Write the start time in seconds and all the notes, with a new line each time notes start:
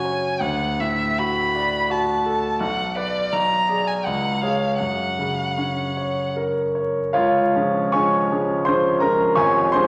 Already playing: F#2 C#3 C#4 F#4 C#5 G#5
0.05 C#5
0.40 D2 F#5
0.80 A2 E5
1.19 F#4 B5
1.56 D5
1.90 F#4 A5
2.26 A4
2.60 B1 F#5
2.97 B4 D5
3.33 B1 A#5
3.69 G#4 D5
3.88 G#5
4.05 C#2 F#5
4.41 G#4 C#5 F5
4.79 F#2 F#5
5.19 C#3
5.58 C#4
5.97 C#5
6.36 A#4
6.75 C#5
7.13 C#2 F4 C#5 F5
7.55 F3 G#3 C#4
7.92 F3 G#3 C#4 C#5 G#5 C#6
8.31 F3 G#3 C#4
8.65 F3 G#3 C#4 C5 C6
9.00 F3 G#3 C#4 A#4 A#5
9.35 F1 F2 C#5 G#5 C#6
9.72 F3 G#3 C#4 C5 C6